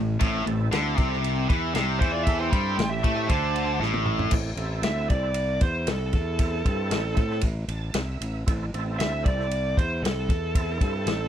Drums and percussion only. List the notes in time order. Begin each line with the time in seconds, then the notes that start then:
0.21 kick, ride
0.47 ride
0.72 snare, ride
0.98 kick, ride
1.12 snare
1.24 ride
1.50 kick, ride
1.75 snare, ride
2.01 kick, ride
2.27 kick, ride
2.53 kick, ride
2.79 snare, ride
3.04 kick, ride
3.29 kick, ride
3.56 ride
3.82 snare
3.94 high tom
4.06 mid tom
4.19 floor tom
4.31 kick, crash
4.57 ride
4.83 snare, ride
5.10 kick, ride
5.34 ride
5.61 kick, ride
5.87 snare, ride
6.13 kick, ride
6.39 kick, ride
6.65 kick, ride
6.91 snare, ride
7.17 kick, ride
7.31 snare
7.41 kick, ride
7.68 ride
7.94 snare, ride
8.21 ride
8.47 kick, ride
8.74 ride
9.00 snare, ride
9.26 kick, ride
9.40 snare
9.51 ride
9.77 kick, ride
10.05 snare, ride
10.29 kick, ride
10.55 kick, ride
10.81 kick, ride
11.07 snare, ride